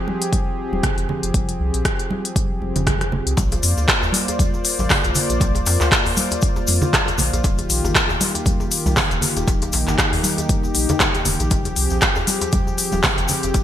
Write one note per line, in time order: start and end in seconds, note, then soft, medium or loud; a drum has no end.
0.00 3.34 F3 medium
0.00 3.33 C4 medium
0.00 3.34 G4 medium
0.00 3.33 G#4 medium
0.08 high conga medium
0.22 closed hi-hat soft
0.33 kick loud
0.33 closed hi-hat medium
0.33 high conga loud
0.72 0.81 D#1 medium
0.72 high conga medium
0.83 kick loud
0.83 cross-stick loud
0.83 closed hi-hat medium
0.83 low conga loud
0.98 1.06 F1 loud
0.98 closed hi-hat soft
1.09 low conga medium
1.23 1.32 F1 medium
1.23 closed hi-hat soft
1.34 1.54 F1 loud
1.34 kick loud
1.34 closed hi-hat medium
1.34 high conga medium
1.49 closed hi-hat soft
1.59 1.70 C2 loud
1.74 1.82 A#1 medium
1.74 closed hi-hat soft
1.85 kick loud
1.85 cross-stick loud
1.85 closed hi-hat medium
1.99 closed hi-hat soft
2.11 high conga loud
2.25 closed hi-hat soft
2.36 kick loud
2.36 closed hi-hat medium
2.36 high conga loud
2.61 2.72 F1 medium
2.61 high conga medium
2.76 3.21 F1 loud
2.76 closed hi-hat soft
2.76 low conga loud
2.87 kick loud
2.87 cross-stick loud
2.87 closed hi-hat medium
2.87 high conga medium
2.87 low conga loud
3.01 cross-stick medium
3.01 closed hi-hat soft
3.12 high conga medium
3.12 low conga medium
3.26 3.35 C2 medium
3.26 closed hi-hat soft
3.37 3.58 A#1 loud
3.37 7.40 A#3 medium
3.37 9.44 F4 medium
3.37 7.40 C5 medium
3.37 7.40 D5 medium
3.37 kick loud
3.37 closed hi-hat medium
3.37 djembe slap medium
3.37 high conga medium
3.37 shaker medium
3.52 closed hi-hat soft
3.52 djembe tone loud
3.52 shaker soft
3.63 3.74 F2 loud
3.63 open hi-hat medium
3.63 shaker medium
3.77 3.86 D2 medium
3.77 djembe tone medium
3.77 shaker soft
3.88 kick loud
3.88 cross-stick loud
3.88 clap loud
3.88 closed hi-hat medium
3.88 shaker soft
4.03 djembe tone loud
4.03 djembe bass medium
4.03 shaker soft
4.12 open hi-hat loud
4.12 high conga loud
4.12 shaker loud
4.28 closed hi-hat soft
4.28 djembe tone medium
4.28 shaker soft
4.39 kick loud
4.39 closed hi-hat medium
4.39 high conga loud
4.39 djembe bass loud
4.39 shaker soft
4.54 djembe tone medium
4.54 shaker soft
4.65 open hi-hat loud
4.65 shaker medium
4.79 4.87 G#1 medium
4.79 high conga medium
4.79 djembe tone medium
4.79 shaker soft
4.89 kick loud
4.89 cross-stick loud
4.89 clap loud
4.89 open hi-hat medium
4.89 low conga loud
4.89 shaker soft
5.04 5.13 A#1 loud
5.04 closed hi-hat soft
5.04 djembe tone medium
5.04 shaker soft
5.15 open hi-hat medium
5.15 low conga loud
5.15 shaker loud
5.29 5.38 A#1 medium
5.29 closed hi-hat soft
5.29 djembe tone medium
5.29 shaker soft
5.40 5.61 A#1 loud
5.40 kick loud
5.40 closed hi-hat medium
5.40 djembe slap medium
5.40 high conga loud
5.40 shaker medium
5.55 closed hi-hat soft
5.55 djembe tone loud
5.55 shaker soft
5.66 5.77 F2 loud
5.66 open hi-hat medium
5.66 djembe slap medium
5.66 shaker medium
5.80 5.89 D2 medium
5.80 clap soft
5.80 djembe tone medium
5.80 shaker soft
5.92 kick loud
5.92 cross-stick loud
5.92 clap loud
5.92 closed hi-hat medium
5.92 shaker medium
6.06 open hi-hat medium
6.06 djembe tone medium
6.06 djembe bass medium
6.06 shaker soft
6.17 open hi-hat medium
6.17 high conga loud
6.17 shaker medium
6.31 closed hi-hat soft
6.31 djembe tone loud
6.31 shaker soft
6.42 kick loud
6.42 closed hi-hat medium
6.42 high conga loud
6.42 shaker medium
6.56 djembe tone medium
6.56 shaker soft
6.67 6.79 F2 medium
6.67 open hi-hat medium
6.67 high conga medium
6.67 shaker loud
6.81 djembe tone medium
6.81 low conga loud
6.81 shaker soft
6.93 kick loud
6.93 cross-stick loud
6.93 clap medium
6.93 closed hi-hat medium
6.93 high conga medium
6.93 low conga loud
6.93 shaker medium
7.08 closed hi-hat soft
7.08 djembe tone medium
7.08 shaker soft
7.18 7.30 A#1 medium
7.18 open hi-hat medium
7.18 low conga medium
7.18 shaker medium
7.33 7.42 A#1 medium
7.33 closed hi-hat soft
7.33 djembe tone medium
7.33 shaker soft
7.44 7.65 D#1 loud
7.44 11.47 D#3 medium
7.44 11.47 A#3 medium
7.44 13.64 G4 medium
7.44 kick loud
7.44 closed hi-hat medium
7.44 djembe slap medium
7.44 high conga medium
7.44 shaker medium
7.58 closed hi-hat soft
7.58 djembe tone medium
7.58 shaker soft
7.70 7.81 A#1 loud
7.70 open hi-hat medium
7.70 shaker medium
7.84 7.92 G1 medium
7.84 djembe tone loud
7.84 shaker soft
7.95 kick loud
7.95 cross-stick loud
7.95 clap loud
7.95 closed hi-hat medium
7.95 shaker medium
8.09 djembe tone loud
8.09 djembe bass medium
8.09 shaker soft
8.21 open hi-hat medium
8.21 high conga loud
8.21 shaker medium
8.35 closed hi-hat soft
8.35 djembe tone medium
8.35 shaker soft
8.46 kick loud
8.46 closed hi-hat medium
8.46 high conga loud
8.46 djembe bass medium
8.46 shaker soft
8.60 djembe tone medium
8.60 shaker soft
8.71 open hi-hat medium
8.71 shaker medium
8.86 8.94 C2 medium
8.86 high conga loud
8.86 djembe tone loud
8.86 shaker soft
8.96 kick loud
8.96 cross-stick loud
8.96 clap loud
8.96 open hi-hat medium
8.96 low conga loud
8.96 shaker medium
9.11 9.20 D#1 loud
9.11 closed hi-hat soft
9.11 djembe tone medium
9.11 shaker soft
9.21 open hi-hat medium
9.21 low conga medium
9.21 shaker loud
9.36 9.45 D#1 medium
9.36 closed hi-hat soft
9.36 djembe tone loud
9.36 shaker soft
9.47 9.68 D#1 loud
9.47 11.49 D#4 medium
9.47 kick loud
9.47 closed hi-hat medium
9.47 djembe slap medium
9.47 high conga medium
9.47 shaker medium
9.62 closed hi-hat soft
9.62 djembe tone loud
9.62 shaker soft
9.73 9.84 A#1 loud
9.73 open hi-hat medium
9.73 djembe slap medium
9.73 shaker medium
9.87 9.96 G1 medium
9.87 clap soft
9.87 djembe tone medium
9.87 shaker soft
9.98 kick loud
9.98 cross-stick loud
9.98 clap loud
9.98 closed hi-hat medium
9.98 shaker medium
10.13 open hi-hat medium
10.13 djembe tone medium
10.13 djembe bass medium
10.13 shaker soft
10.23 open hi-hat medium
10.23 high conga loud
10.23 shaker medium
10.38 closed hi-hat soft
10.38 djembe tone medium
10.38 shaker soft
10.49 kick loud
10.49 closed hi-hat medium
10.49 high conga loud
10.49 shaker medium
10.63 djembe tone medium
10.63 shaker soft
10.75 10.86 A#1 medium
10.75 open hi-hat medium
10.75 high conga medium
10.75 shaker medium
10.89 closed hi-hat soft
10.89 djembe tone loud
10.89 low conga loud
10.89 shaker soft
11.00 kick loud
11.00 cross-stick loud
11.00 clap loud
11.00 closed hi-hat medium
11.00 high conga medium
11.00 low conga loud
11.00 shaker soft
11.14 closed hi-hat soft
11.14 djembe tone medium
11.14 shaker soft
11.25 11.37 D#1 medium
11.25 open hi-hat medium
11.25 low conga medium
11.25 shaker loud
11.40 11.49 A#1 loud
11.40 closed hi-hat soft
11.40 djembe tone medium
11.40 shaker soft
11.50 11.71 F1 loud
11.50 13.64 F3 medium
11.50 13.64 C4 medium
11.50 13.64 G#4 medium
11.50 kick loud
11.50 closed hi-hat medium
11.50 djembe slap medium
11.50 high conga medium
11.50 shaker soft
11.65 closed hi-hat soft
11.65 djembe tone medium
11.65 shaker soft
11.76 11.88 C2 loud
11.76 open hi-hat medium
11.76 shaker medium
11.90 11.99 A#1 medium
11.90 djembe tone medium
11.90 shaker soft
12.01 kick loud
12.01 cross-stick loud
12.01 clap loud
12.01 closed hi-hat medium
12.01 shaker medium
12.15 djembe tone medium
12.15 djembe bass loud
12.15 shaker soft
12.27 open hi-hat medium
12.27 high conga loud
12.27 shaker medium
12.41 closed hi-hat soft
12.41 djembe tone loud
12.41 shaker soft
12.52 kick loud
12.52 closed hi-hat medium
12.52 high conga loud
12.52 djembe bass medium
12.52 shaker soft
12.67 djembe tone medium
12.67 shaker soft
12.78 open hi-hat medium
12.78 shaker medium
12.92 13.01 D#1 medium
12.92 high conga medium
12.92 djembe tone medium
12.92 shaker soft
13.03 kick loud
13.03 cross-stick loud
13.03 clap loud
13.03 open hi-hat medium
13.03 low conga loud
13.03 shaker medium
13.18 13.27 F1 loud
13.18 closed hi-hat soft
13.18 djembe tone medium
13.18 shaker soft
13.28 open hi-hat medium
13.28 low conga medium
13.28 shaker loud
13.43 13.52 F1 medium
13.43 closed hi-hat soft
13.43 djembe tone medium
13.43 shaker soft
13.54 13.64 F1 loud
13.54 kick loud
13.54 closed hi-hat medium
13.54 djembe slap medium
13.54 high conga medium
13.54 shaker soft